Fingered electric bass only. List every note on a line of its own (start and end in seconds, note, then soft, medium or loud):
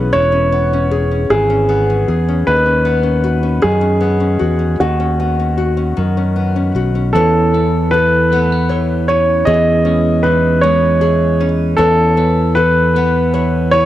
0.00 0.12 B1 medium
0.14 1.26 E1 medium
1.30 2.04 G#1 medium
2.08 2.44 E2 medium
2.47 3.59 D#2 medium
3.64 4.37 F#2 medium
4.41 4.77 E2 medium
4.80 5.93 D#2 medium
5.98 6.72 F#2 medium
6.75 7.12 B1 medium
7.15 9.44 E2 medium
9.47 11.75 E2 loud
11.79 13.85 E2 loud